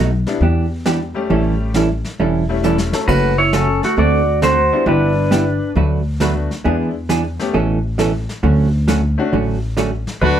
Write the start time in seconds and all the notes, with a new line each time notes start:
Already playing: B1
0.26 G3 B3 D4 E4, snare
0.41 E2 E3 B3 D4 G4, brush sweep
0.86 E3 B3 D4 G4, snare, hi-hat pedal
1.14 G3 A3 C#4 G4
1.30 A1 E3 G3 C#4 E4 A4, brush sweep
1.74 E3 G3 C#4 E4 A4, snare, hi-hat pedal
2.04 snare
2.19 E1 E3 G3 C#4 E4 A4, brush sweep
2.49 G3 A3 C#4 E4
2.63 E3 G3 C#4 E4 A4, hi-hat pedal
2.78 snare
2.93 F#3 A3 C#4 A4, snare
3.08 F#1 C#3 F#3 A3 C#4 F#4 B4, brush sweep, kick, crash
3.38 E4 C#5
3.53 C#3 F#3 A3 C#4 F#4 A4, snare, hi-hat pedal
3.83 A3 F#4, snare
3.97 D2 D3 A3 C4 F#4 A4 D5, brush sweep
4.42 D3 A3 C4 F#4 A4 C5, snare, hi-hat pedal
4.72 G3 B3 D4 E4
4.86 G1 G3 B3 D4 E4 G4 B4, brush sweep
5.31 G3 B3 E4 G4, snare, hi-hat pedal
5.75 D2 D3 F#3 A3 D4 F#4 B4, brush sweep
6.20 D3 F#3 A3 B3 D4 F#4 B4, snare, hi-hat pedal
6.51 snare
6.64 E2 E3 G#3 B3 D4 E4 G#4, brush sweep
7.09 E3 B3 D4 G#4, snare, hi-hat pedal
7.39 A3 B3 C#4 G4, snare
7.54 A1 B2 E3 A3 C#4 A4, brush sweep
7.98 B2 E3 A3 C#4 A4, snare, hi-hat pedal
8.29 snare
8.43 D2 D3 F#3 A3 C#4 F#4, brush sweep
8.88 D3 F#3 A3 C#4 F#4, snare, hi-hat pedal
9.18 A3 C#4 D4 F#4
9.32 A1 D3 F#3 A3 C#4 F#4, brush sweep
9.77 D3 F#3 A3 C#4 F#4, snare, hi-hat pedal
10.07 snare
10.21 D2 D3 F#3 A3 D4 F#4 B4, brush sweep